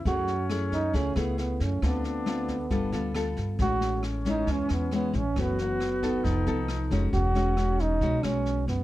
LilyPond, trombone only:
\new Staff \with { instrumentName = "Trombone" } { \time 4/4 \key fis \dorian \tempo 4 = 136 fis'4 r8 dis'8 cis'8 b8 b8 cis'8 | b8 b2. r8 | fis'4 r8 dis'8 cis'8 b8 b8 cis'8 | b8 b2. r8 |
fis'4. dis'4 cis'4 b8 | }